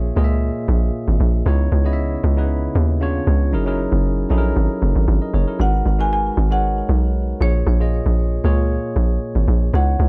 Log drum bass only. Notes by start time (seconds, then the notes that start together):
Already playing: A#1
0.17 C#2
0.68 A#1
1.08 G#1
1.20 A#1
1.46 C#2
1.72 C#2
2.24 C#2
2.75 D#2
3.27 C#2
3.53 F#1
3.92 F#1
4.30 A#1
4.56 G#1
4.82 F#1
4.96 G#1
5.08 G#1
5.34 F#1
5.60 G#1
5.86 G#1
6.37 G#1
6.89 B1
7.41 A#1
7.67 A#1
8.06 A#1
8.44 C#2
8.96 A#1
9.35 G#1
9.48 A#1
9.74 C#2
9.99 C#2